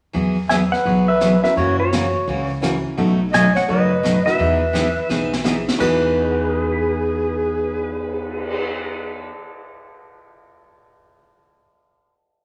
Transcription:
0.13 0.72 E2 medium
0.13 0.36 E3 medium
0.13 0.36 F#3 medium
0.13 0.36 B3 medium
0.13 0.36 F#4 medium
0.13 0.36 G#4 medium
0.13 brush sweep medium
0.13 kick soft
0.49 0.61 E3 medium
0.49 0.61 F#3 medium
0.49 0.61 B3 medium
0.49 0.62 F#4 medium
0.49 0.62 G#4 medium
0.49 0.60 E5 medium
0.49 0.56 G#5 loud
0.49 snare medium
0.49 hi-hat pedal medium
0.72 1.05 B4 medium
0.72 1.09 F#5 loud
0.72 snare soft
0.85 1.42 B1 medium
0.85 1.07 E3 soft
0.85 1.07 F#3 medium
0.85 1.07 B3 soft
0.85 1.08 F#4 medium
0.85 1.08 G#4 medium
0.85 brush sweep soft
0.85 kick soft
1.08 1.42 B4 medium
1.08 1.42 E5 medium
1.21 1.32 E3 medium
1.21 1.33 F#3 medium
1.21 1.33 B3 medium
1.21 1.33 F#4 medium
1.21 1.33 G#4 medium
1.21 snare medium
1.21 hi-hat pedal medium
1.42 1.89 C#4 medium
1.42 1.89 E4 medium
1.42 1.89 F#4 medium
1.42 1.90 A#4 medium
1.42 1.58 B4 medium
1.42 1.57 E5 medium
1.42 snare soft
1.56 2.14 F#2 medium
1.56 1.78 C#3 medium
1.56 1.79 E3 medium
1.56 1.79 A#3 medium
1.56 1.79 C#4 medium
1.56 1.79 F#4 medium
1.56 1.78 C#5 medium
1.56 brush sweep soft
1.56 kick soft
1.79 2.46 F#4 medium
1.79 2.46 C#5 medium
1.93 2.04 C#3 medium
1.93 2.04 E3 medium
1.93 2.04 A#3 medium
1.93 2.04 C#4 medium
1.93 2.05 F#4 medium
1.93 snare medium
1.93 hi-hat pedal soft
2.27 2.84 C#2 medium
2.27 2.49 C#3 medium
2.27 2.50 E3 medium
2.27 2.49 A#3 soft
2.27 2.50 C#4 medium
2.27 2.50 F#4 medium
2.27 brush sweep soft
2.27 kick soft
2.61 2.74 C#3 medium
2.61 2.74 E3 medium
2.61 2.74 A#3 medium
2.61 2.98 C#4 medium
2.61 2.75 C#4 medium
2.61 2.98 E4 soft
2.61 2.96 F#4 soft
2.61 2.75 F#4 medium
2.61 2.98 A#4 medium
2.61 snare medium
2.61 hi-hat pedal medium
2.97 3.55 B1 medium
2.97 3.19 B2 medium
2.97 3.19 F#3 medium
2.97 3.20 A3 medium
2.97 3.18 B3 medium
2.97 3.18 D#4 medium
2.97 3.20 D#4 medium
2.97 3.18 F#4 medium
2.97 3.20 F#4 medium
2.97 3.18 A4 medium
2.97 brush sweep soft
2.97 kick soft
3.32 3.45 B2 medium
3.32 3.45 F#3 medium
3.32 3.45 A3 medium
3.32 3.45 D#4 medium
3.32 3.45 F#4 medium
3.32 3.56 D#5 medium
3.32 3.57 G#5 loud
3.32 snare medium
3.32 hi-hat pedal medium
3.55 3.68 C#5 medium
3.55 3.70 F#5 loud
3.55 snare soft
3.68 4.25 F#1 medium
3.68 3.90 B2 soft
3.68 3.90 F#3 medium
3.68 3.90 A3 medium
3.68 3.90 D#4 medium
3.68 3.91 F#4 medium
3.68 4.22 B4 medium
3.68 4.25 D#5 medium
3.68 brush sweep soft
3.68 kick soft
4.03 4.15 B2 medium
4.03 4.15 F#3 medium
4.03 4.15 A3 medium
4.03 4.16 D#4 medium
4.03 4.16 F#4 medium
4.03 snare medium
4.03 hi-hat pedal medium
4.25 4.38 B3 medium
4.25 4.38 D#4 medium
4.25 4.38 E4 medium
4.25 4.38 F#4 medium
4.25 5.63 B4 medium
4.25 5.63 E5 medium
4.25 snare soft
4.38 4.96 E2 medium
4.38 4.60 E3 medium
4.38 4.61 B3 medium
4.38 4.61 D#4 medium
4.38 4.61 G#4 medium
4.38 brush sweep soft
4.38 kick soft
4.73 4.85 E3 medium
4.73 4.86 B3 medium
4.73 4.86 D#4 medium
4.73 4.86 G#4 medium
4.73 snare medium
4.73 hi-hat pedal medium
5.09 5.66 B1 medium
5.09 5.31 E3 soft
5.09 5.31 B3 medium
5.09 5.31 D#4 medium
5.09 5.31 G#4 medium
5.09 snare soft
5.33 snare medium
5.44 5.56 E3 medium
5.44 5.80 B3 medium
5.44 5.56 B3 medium
5.44 5.78 D#4 medium
5.44 5.56 D#4 medium
5.44 5.80 E4 medium
5.44 5.79 G#4 medium
5.44 5.57 G#4 medium
5.44 snare medium
5.44 hi-hat pedal medium
5.68 snare medium
5.78 9.30 E2 medium
5.78 9.27 E2 medium
5.78 9.29 E3 medium
5.78 9.30 E3 medium
5.78 9.31 B3 medium
5.78 9.31 D#4 medium
5.78 9.32 D#4 medium
5.78 9.31 F#4 medium
5.78 9.26 G#4 medium
5.78 9.32 G#4 medium
5.78 9.33 G#4 medium
5.78 9.27 B4 medium
5.78 kick medium
5.78 crash medium
6.03 cymbal swell soft
6.15 9.62 B4 soft
6.23 9.70 D#5 soft
6.31 9.78 F#5 soft
6.40 9.87 B5 soft
6.50 9.97 D#6 soft
6.61 10.08 F#6 soft
6.72 10.19 B6 soft

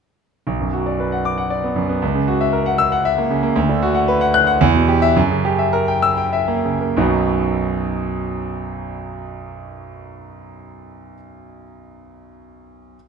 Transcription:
0.47 1.98 B1 medium
0.60 0.81 F#2 soft
0.73 0.94 F#4 soft
0.86 1.07 D5 soft
1.00 1.20 B4 medium
1.12 1.33 F#5 medium
1.25 1.46 D6 medium
1.38 1.59 F#5 medium
1.50 1.71 D5 medium
1.64 1.84 B3 soft
1.76 1.97 F#2 medium
1.89 2.02 B3 medium
2.02 3.51 C#2 medium
2.15 2.35 C#3 medium
2.28 2.48 F#4 medium
2.41 2.61 E5 medium
2.53 2.73 A#4 medium
2.66 2.86 F#5 medium
2.78 2.99 E6 loud
2.92 3.12 F#5 medium
3.05 3.25 E5 medium
3.18 3.38 A#3 medium
3.30 3.50 C#3 medium
3.43 3.56 A#3 medium
3.56 4.58 D2 medium
3.69 3.90 D3 medium
3.83 4.03 F#4 medium
3.95 4.16 F#5 medium
4.08 4.29 B4 medium
4.21 4.42 F#5 medium
4.34 4.56 F#6 loud
4.47 4.61 F#5 medium
4.61 5.14 E2 loud
4.75 4.97 B2 medium
4.88 5.11 G4 medium
5.02 5.16 E5 medium
5.16 6.95 F#2 medium
5.30 5.53 C#3 medium
5.45 5.68 G4 medium
5.59 5.82 E5 medium
5.73 5.97 A#4 medium
5.88 6.12 G5 medium
6.02 6.28 E6 medium
6.17 6.43 G5 medium
6.33 6.59 E5 medium
6.48 6.75 A#3 medium
6.64 6.91 C#3 medium
6.81 6.98 A#3 medium
6.97 11.13 B1 medium
6.97 11.14 F#2 medium
6.97 11.14 F#3 medium
6.97 11.14 B3 medium
6.97 11.14 D#4 medium
6.97 11.15 F#4 medium

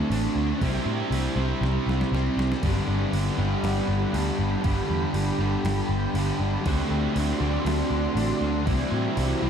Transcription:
0.00 0.60 D3 medium
0.00 0.61 A3 medium
0.00 0.61 C4 medium
0.00 0.11 D4 medium
0.00 0.62 F#4 medium
0.09 0.26 A1 medium
0.09 0.59 D3 medium
0.09 0.37 A3 medium
0.09 0.34 D4 medium
0.09 crash medium
0.35 0.51 D2 medium
0.35 0.61 A3 medium
0.35 0.59 D4 medium
0.60 0.77 C2 medium
0.60 1.10 C3 medium
0.60 2.62 C3 medium
0.60 0.88 G3 loud
0.60 2.63 G3 medium
0.60 2.63 C4 medium
0.60 0.84 C4 loud
0.60 2.64 E4 medium
0.60 2.65 G4 medium
0.60 kick loud
0.60 crash medium
0.86 1.02 A2 medium
0.86 1.13 G3 medium
0.86 1.13 C4 medium
1.11 1.27 C2 medium
1.11 1.62 C3 medium
1.11 1.39 G3 medium
1.11 1.35 C4 medium
1.11 crash medium
1.36 1.52 C2 medium
1.36 2.11 C3 medium
1.36 2.14 C4 medium
1.36 snare soft
1.40 2.13 G3 medium
1.61 1.77 C2 medium
1.61 snare medium
1.87 2.03 C2 medium
1.87 snare medium
2.01 snare medium
2.12 2.28 C2 medium
2.12 2.61 C3 medium
2.12 2.40 G3 medium
2.12 2.36 C4 medium
2.12 snare medium
2.37 2.53 C2 medium
2.37 2.65 G3 medium
2.37 2.61 C4 medium
2.37 snare medium
2.52 snare medium
2.62 2.79 G1 medium
2.62 3.11 G2 medium
2.62 6.65 G2 medium
2.62 6.64 D3 medium
2.62 2.89 D3 loud
2.62 6.66 G3 medium
2.62 2.87 G3 loud
2.62 6.67 B3 medium
2.62 6.67 D4 medium
2.62 6.63 G4 medium
2.62 6.67 G4 medium
2.62 4.63 F#5 medium
2.62 6.62 B5 medium
2.62 kick loud
2.62 crash medium
2.87 3.04 G1 medium
2.87 3.13 D3 medium
2.87 3.15 G3 medium
3.12 3.29 G1 medium
3.12 4.12 G2 medium
3.12 3.39 D3 medium
3.12 3.37 G3 medium
3.12 crash medium
3.37 3.54 G1 medium
3.37 4.11 G2 medium
3.37 4.13 D3 medium
3.37 4.15 G3 medium
3.37 snare soft
3.63 3.79 G1 medium
3.63 snare loud
3.63 crash medium
3.88 4.04 G1 medium
4.12 4.29 D2 loud
4.12 4.62 G2 medium
4.12 4.40 D3 medium
4.12 4.37 G3 medium
4.12 crash medium
4.39 4.55 G1 medium
4.39 4.63 D3 medium
4.39 4.64 G3 medium
4.63 4.80 G1 medium
4.63 5.12 G2 medium
4.63 4.90 D3 medium
4.63 4.87 G3 loud
4.63 6.64 G5 medium
4.63 kick loud
4.63 crash medium
4.88 5.05 E2 loud
4.88 5.13 D3 medium
4.88 5.15 G3 medium
5.13 5.30 G1 medium
5.13 5.64 G2 medium
5.13 5.41 D3 medium
5.13 5.38 G3 medium
5.13 crash medium
5.39 5.55 G1 medium
5.39 6.15 G2 medium
5.39 6.14 D3 medium
5.39 6.16 G3 medium
5.64 5.80 G1 medium
5.64 snare loud
5.64 crash medium
5.89 6.05 G1 medium
6.14 6.30 G1 medium
6.14 6.63 G2 medium
6.14 6.41 D3 medium
6.14 6.38 G3 medium
6.14 crash medium
6.39 6.56 G1 medium
6.39 6.63 D3 medium
6.39 6.64 G3 medium
6.64 6.82 D2 loud
6.64 7.15 D3 medium
6.64 8.66 D3 medium
6.64 6.92 A3 medium
6.64 8.67 A3 medium
6.64 8.67 C4 medium
6.64 6.89 D4 loud
6.64 8.64 F#4 medium
6.64 8.64 D5 medium
6.64 8.64 C6 medium
6.64 kick loud
6.64 crash medium
6.68 8.68 F#4 medium
6.90 7.06 D2 medium
6.90 7.17 A3 medium
6.90 7.18 D4 medium
7.16 7.32 D2 medium
7.16 7.66 D3 medium
7.16 7.43 A3 medium
7.16 7.40 D4 medium
7.16 crash medium
7.41 7.56 D2 medium
7.41 8.14 D3 medium
7.41 8.16 A3 medium
7.41 8.17 D4 medium
7.65 7.81 D2 medium
7.65 snare loud
7.65 crash medium
7.90 8.06 D2 medium
8.15 8.31 A1 medium
8.15 8.65 D3 medium
8.15 8.42 A3 medium
8.15 8.39 D4 medium
8.15 crash medium
8.40 8.68 D2 medium
8.40 8.66 A3 medium
8.40 8.64 D4 medium
8.64 8.82 C2 medium
8.64 9.15 C3 medium
8.64 9.50 C3 medium
8.64 9.50 E3 medium
8.64 8.95 G3 loud
8.64 9.50 G3 medium
8.64 9.50 E4 medium
8.64 9.50 C5 medium
8.64 9.50 B5 medium
8.64 kick loud
8.64 crash medium
8.68 9.50 C4 medium
8.68 8.91 C4 loud
8.68 9.50 E4 medium
8.92 9.07 A2 medium
8.92 9.18 C4 medium
8.96 9.17 G3 medium
9.16 9.33 C2 loud
9.16 9.50 C3 medium
9.16 9.43 G3 medium
9.16 9.40 C4 medium
9.16 crash medium
9.41 9.50 C2 medium
9.41 9.50 C3 medium
9.41 9.50 G3 medium
9.41 9.50 C4 medium

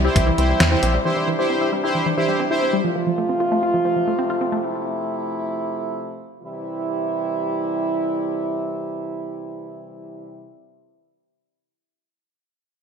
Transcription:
0.00 2.81 C3 medium
0.00 2.81 E3 medium
0.00 2.81 G3 medium
0.00 1.03 E4 medium
0.04 0.27 E4 medium
0.04 0.10 E4 medium
0.04 0.27 G4 medium
0.04 0.27 C5 loud
0.16 0.31 C2 loud
0.16 0.22 E3 medium
0.16 kick medium
0.16 closed hi-hat medium
0.27 0.33 E3 medium
0.38 0.54 C2 loud
0.38 0.44 E3 medium
0.38 0.61 E4 medium
0.38 0.61 G4 medium
0.38 0.61 C5 medium
0.38 closed hi-hat medium
0.49 0.55 G3 medium
0.60 0.76 E2 loud
0.60 0.66 C4 medium
0.60 snare loud
0.60 closed hi-hat medium
0.72 0.95 E4 medium
0.72 0.77 E4 medium
0.72 0.95 G4 medium
0.72 0.94 C5 loud
0.83 0.99 A#1 medium
0.83 0.89 C4 medium
0.83 closed hi-hat medium
0.94 1.00 G3 medium
1.05 1.11 E3 medium
1.05 2.83 D4 medium
1.05 1.28 E4 medium
1.05 1.28 G4 medium
1.05 1.28 C5 loud
1.16 1.22 E3 medium
1.28 1.33 E3 medium
1.39 1.45 G3 medium
1.39 1.69 E4 medium
1.39 1.69 G4 medium
1.39 1.69 C5 loud
1.50 1.56 C4 medium
1.61 1.67 E4 medium
1.72 1.78 G3 medium
1.84 2.06 E4 medium
1.84 1.89 E4 medium
1.84 2.06 G4 medium
1.84 2.06 C5 loud
1.95 2.01 E3 medium
2.06 2.12 E3 medium
2.17 2.23 E3 medium
2.17 2.40 E4 medium
2.17 2.40 G4 medium
2.17 2.40 C5 loud
2.28 2.34 G3 medium
2.40 2.45 C4 medium
2.51 2.56 E4 medium
2.51 2.74 E4 medium
2.51 2.74 G4 medium
2.51 2.74 C5 loud
2.62 2.68 C4 medium
2.73 2.79 G3 medium
2.84 6.25 C3 medium
2.84 2.90 F3 medium
2.84 6.25 F3 medium
2.84 6.25 A3 medium
2.84 4.62 F4 medium
2.96 3.01 F3 medium
3.07 3.12 F3 medium
3.18 3.24 A3 medium
3.29 3.35 C4 medium
3.40 3.46 F4 medium
3.52 3.57 A3 medium
3.63 3.69 F4 medium
3.74 3.80 F3 medium
3.85 3.91 F3 medium
3.96 4.02 F3 medium
4.08 4.13 A3 medium
4.19 4.24 C4 medium
4.30 4.36 F4 medium
4.41 4.47 C4 medium
4.52 4.58 A3 medium
4.64 6.25 E4 medium
6.42 10.51 C3 medium
6.42 10.51 E3 medium
6.42 10.51 G3 medium
6.42 10.51 E4 medium

